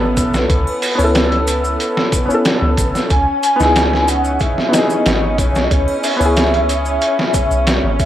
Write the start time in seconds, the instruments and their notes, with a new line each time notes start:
Already playing: 808-style bass G#1, felt piano B3 C#4 E4 A4, string section B3
0.17 808-style bass B1, kick, closed hi-hat, maracas
0.34 snare, maracas
0.50 808-style bass C#2, kick, closed hi-hat, maracas
0.67 triangle
0.82 open hi-hat, maracas
0.95 808-style bass C#2, felt piano B3 C#4
0.99 felt piano E4, triangle, maracas
1.04 felt piano A4
1.15 snare, closed hi-hat, maracas
1.32 closed hi-hat
1.47 closed hi-hat, maracas
1.64 maracas
1.80 closed hi-hat, maracas
1.97 snare
2.12 kick, closed hi-hat, maracas
2.25 felt piano B3 C#4
2.30 felt piano E4, maracas
2.34 felt piano A4
2.45 snare, closed hi-hat, maracas
2.62 808-style bass C#2
2.77 808-style bass G#1, kick, closed hi-hat, maracas
2.95 snare, maracas
3.09 808-style bass C#2, string section C#4, soft synth lead G#5, kick, closed hi-hat, maracas
3.43 closed hi-hat, maracas
3.56 felt piano B3 D#4, maracas
3.60 808-style bass C#2, felt piano E4, snare
3.65 felt piano G#4
3.76 snare, closed hi-hat, maracas
3.93 snare
4.08 soft synth lead F#5, closed hi-hat, maracas
4.25 maracas
4.39 soft synth lead E5, kick, closed hi-hat, maracas
4.58 snare
4.69 felt piano B3 D#4
4.73 felt piano E4, soft synth lead D#5, snare, closed hi-hat, maracas
4.78 felt piano G#4
4.90 maracas
5.06 808-style bass G#1, snare, closed hi-hat, maracas
5.38 808-style bass B1, soft synth lead C#5, kick, closed hi-hat, maracas
5.55 snare, maracas
5.64 soft synth lead D#5
5.70 808-style bass C#2, soft synth lead C#5, kick, closed hi-hat, maracas
5.88 triangle
6.03 soft synth lead E5, open hi-hat, maracas
6.16 felt piano B3 C#4
6.20 808-style bass C#2, felt piano E4, triangle, maracas
6.25 felt piano G#4
6.36 snare, closed hi-hat, maracas
6.54 closed hi-hat
6.69 closed hi-hat, maracas
6.85 maracas
7.01 closed hi-hat, maracas
7.19 snare
7.34 kick, closed hi-hat, maracas
7.51 808-style bass B1, maracas
7.67 snare, closed hi-hat, maracas
7.84 808-style bass G#1
7.99 soft synth lead E5, kick, closed hi-hat, maracas